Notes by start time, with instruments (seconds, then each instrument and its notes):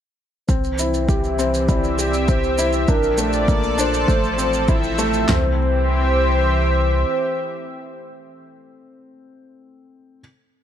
0.47 sub bass C2, analog synth pad E3, felt piano C4, soft synth lead C5, kick, shaker
0.64 analog synth pad C4, shaker
0.79 felt piano E4, shaker
0.94 shaker
1.08 felt piano G4, soft synth lead E5, kick, shaker
1.24 shaker
1.39 felt piano C4, shaker
1.46 analog synth pad G4
1.54 analog synth pad E5, shaker
1.68 felt piano E4, soft synth lead D5, kick, shaker
1.84 shaker
1.99 felt piano G4, shaker
2.14 shaker
2.28 felt piano C4, soft synth lead C5, kick, shaker
2.44 shaker
2.58 felt piano E4, shaker
2.73 shaker
2.88 sub bass A#1, analog synth pad F3, felt piano D4, soft synth lead A#4, kick, shaker
3.03 shaker
3.15 felt piano A3, analog synth pad D5, soft synth lead D5, shaker
3.33 analog synth pad A4, shaker
3.48 felt piano A#3, kick, shaker
3.64 shaker
3.78 felt piano D4, soft synth lead C5, shaker
3.94 shaker
4.07 sub bass A1, felt piano A3, kick, shaker
4.24 shaker
4.38 felt piano C4, shaker
4.45 analog synth pad C4
4.53 shaker
4.63 analog synth pad E5
4.68 felt piano E4, kick, shaker
4.84 shaker
4.98 felt piano A3, shaker
5.14 shaker
5.28 sub bass C2, analog synth pad E3, felt piano C4, soft synth lead C5, snare, clap, floor tom
5.37 analog synth pad C4
5.48 analog synth pad G4
5.57 analog synth pad E5